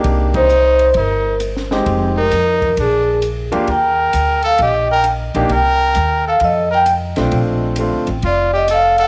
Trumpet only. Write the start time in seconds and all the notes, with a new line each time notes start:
0.35 D#4
0.97 D#4
2.17 D#4
2.79 D4
3.69 A#4
4.44 A4
4.62 G4
4.91 A#4
5.52 A#4
6.27 A4
6.43 A4
6.71 A#4
8.24 F4
8.53 G4
8.71 A4
8.99 A4